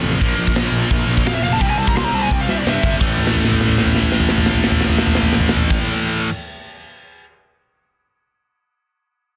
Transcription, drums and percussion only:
0.21 kick, ride bell
0.47 kick
0.56 snare, ride bell
0.90 kick, ride bell
1.17 kick
1.26 snare, ride bell
1.61 kick, ride bell
1.87 kick
1.96 snare, ride bell
2.31 kick, high tom
2.49 snare
2.67 snare
2.83 kick
3.00 kick, crash
3.18 floor tom
3.27 snare
3.35 floor tom
3.44 snare
3.51 floor tom
3.61 snare
3.68 floor tom
3.78 snare
3.85 floor tom
3.95 snare
4.03 floor tom
4.12 snare
4.20 floor tom
4.29 snare
4.38 floor tom
4.46 snare
4.54 floor tom
4.64 snare
4.72 floor tom
4.81 snare
4.89 floor tom
4.98 snare
5.07 floor tom
5.15 snare
5.22 floor tom
5.33 snare
5.40 floor tom
5.49 snare
5.56 floor tom
5.70 kick, crash

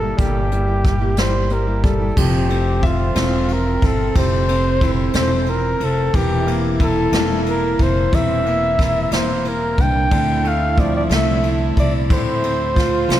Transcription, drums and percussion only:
0.19 kick, closed hi-hat
0.52 closed hi-hat
0.85 kick, snare, closed hi-hat
1.17 snare, closed hi-hat
1.50 closed hi-hat
1.84 kick, closed hi-hat
2.17 kick, crash
2.50 ride
2.83 kick, ride
3.15 snare, ride
3.48 ride
3.82 kick, ride
4.16 kick, ride
4.48 ride
4.81 kick, ride
5.13 snare, ride
5.46 ride
5.81 ride
6.14 kick, ride
6.48 ride
6.80 kick, ride
7.12 snare, ride
7.46 ride
7.79 kick, ride
8.13 kick, ride
8.46 ride
8.79 kick, snare, ride
9.12 snare, ride
9.45 ride
9.78 kick, ride
10.11 kick, ride
10.45 ride
10.78 kick, ride
11.10 snare, ride
11.43 ride
11.77 kick, ride
12.10 kick, ride
12.44 ride
12.76 kick, snare, ride
13.10 snare, ride

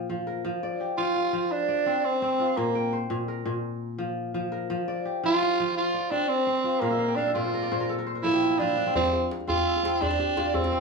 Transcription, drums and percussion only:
8.95 djembe slap, djembe bass
9.05 djembe slap
9.12 djembe tone
9.31 djembe slap
9.40 djembe tone
9.49 djembe bass
9.58 djembe slap
9.76 djembe slap, djembe tone
9.85 djembe slap
10.02 djembe tone, djembe bass
10.11 djembe slap
10.37 djembe slap, djembe tone
10.55 djembe bass
10.64 djembe slap, djembe tone
10.74 djembe slap

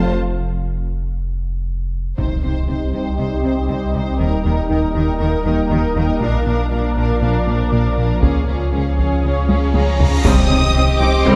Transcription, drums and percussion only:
2.18 taiko
6.21 taiko
8.23 taiko
8.98 taiko
9.49 taiko high
9.74 taiko high
9.99 taiko low
10.25 taiko
11.26 taiko

